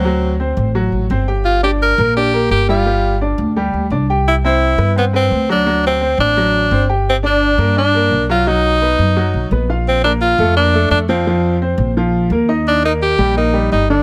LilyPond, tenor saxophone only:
\new Staff \with { instrumentName = "Tenor saxophone" } { \time 4/4 \key g \dorian \tempo 4 = 171 c'4 r2. | f'8 g'8 bes'4 g'4 g'8 f'8~ | f'4 r2. | e'8 e'4. b8 c'4 d'8~ |
d'8 c'4 d'2 r8 | c'8 d'4. d'4. f'8 | dis'2. r4 | c'8 d'8 f'4 d'4 d'8 c'8~ |
c'4 r2. | d'8 ees'8 g'4 ees'4 ees'8 d'8 | }